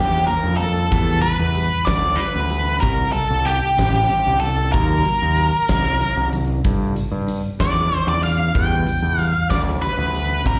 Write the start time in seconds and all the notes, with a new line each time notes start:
Already playing: E2 G3 A#3 G4
0.27 G3 A#3 A#4, closed hi-hat
0.44 F2
0.57 G3 A#3 A4, closed hi-hat
0.91 E2 E3 G3 B3, kick, closed hi-hat
1.22 E3 G3 B4, closed hi-hat
1.39 E2
1.55 E3 G3, closed hi-hat
1.85 D2 E3 G3 D5, kick, snare, closed hi-hat
2.16 E3 G3 B4, closed hi-hat
2.36 D2
2.50 E3 G3, closed hi-hat
2.80 C2 C3 G3 C4 A#4, kick, closed hi-hat
3.12 C3 G3 A4, closed hi-hat
3.30 C2
3.45 C3 G3 G4, closed hi-hat
3.77 A1 C3 G3, kick, snare, closed hi-hat
4.09 C3 G3, closed hi-hat
4.27 C2
4.40 C3 G3 A4, closed hi-hat
4.72 D#2 D#3 F#3 A#3 A#4, kick, closed hi-hat
5.05 D#3 F#3, closed hi-hat
5.22 D#2
5.37 D#3 F#3, closed hi-hat
5.68 C2 D#3 F#3, kick, snare, closed hi-hat
6.00 D#3 F#3, closed hi-hat
6.16 C2
6.33 D#3 F#3, closed hi-hat
6.64 G2 D3 G3, kick, closed hi-hat
6.96 G2 D3, closed hi-hat
7.12 G2
7.27 G2 D3, closed hi-hat
7.59 E2 G2 D3 D5, kick, snare, closed hi-hat
7.91 G2 D3, closed hi-hat
8.07 E2 D5
8.22 G2 D3 F5, closed hi-hat
8.55 E2 E3 G3 B3 G5, kick, closed hi-hat
8.86 E3 G3, closed hi-hat
9.03 E2
9.18 E3 G3 F5, closed hi-hat
9.49 D2 E3 G3 D5, kick, snare, closed hi-hat
9.82 E3 G3 B4, closed hi-hat
9.98 D2
10.13 E3 G3, closed hi-hat
10.45 C2 C3 G3 C4 A#4, kick, closed hi-hat